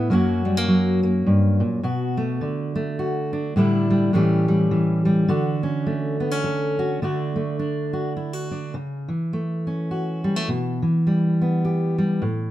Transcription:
steel-string acoustic guitar
Already playing: E4
0.10 F#2 F#3 A#3 C#4 F#4
0.45 G3
0.57 A#3
0.68 F#3
1.03 A#3
1.26 G2
1.60 A#2
1.83 B2 F#4
2.17 A3
2.41 D3
2.75 A3
2.99 F#4
3.33 D4
3.56 A2 D3 G3 D4 E4
3.90 G3
4.13 A2 E3 G3 C#4 G4
4.48 G3
4.71 E3
5.05 G3
5.28 D3 F#4
5.63 C#4
5.86 A3
6.20 B3
6.31 C#4
6.44 A4
6.79 F#4
7.02 D3 A3 D4 F#4
7.36 A3
7.59 D4
7.93 F#4
8.17 E4
8.33 F#4
8.51 D4
8.74 C#3
9.08 E3
9.33 A3
9.67 C#4
9.91 F#4
10.24 G3
10.36 A3
10.48 B2
10.82 E3
11.07 G3
11.41 B3
11.65 G4
11.98 G3
12.22 A2

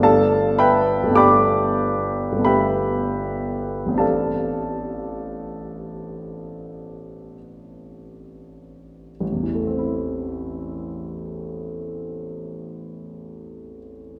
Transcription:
grand piano
Already playing: G1 A3 B3
0.00 D4 G4 A4 D5 F5 A5
0.59 B4 E5 G5 B5
1.04 G1 A3
1.10 B3 D4
1.15 G4 D5 G5 B5 D6
2.33 G1 A3
2.38 B3 D4
2.45 G4 B4 E5 G5 B5
3.86 A1 B3
3.92 C4 D4
3.98 G4 A4 D5 F5 A5
9.20 A1
9.32 E2
9.43 E3
9.55 A3
9.67 C4
9.79 E4

